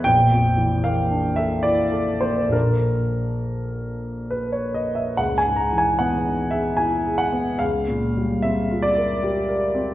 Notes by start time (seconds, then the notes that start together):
0.04 A#1 G5
0.32 F2
0.57 E3
0.84 A#3 F5
1.11 D4
1.36 A4 E5
1.63 E4 D5
1.92 A4
2.21 A#3 C5
2.49 A#1 F3 A#3 D4 A4 A#4
4.30 B4
4.52 C#5
4.74 D#5
4.95 E5
5.17 C#2 F#5
5.38 G#5
5.45 G#2
5.56 A#5
5.73 E3
5.78 G#5
5.99 B3 F#5
6.25 D#4
6.51 G#4 E5
6.77 E4 G#5
7.05 G#4
7.18 F#5
7.32 B3
7.59 C#2 F5
7.88 A#2
8.17 G3
8.42 C4 E5
8.71 F4
8.82 D5
8.97 A#4
9.23 G4
9.49 A#4
9.74 C4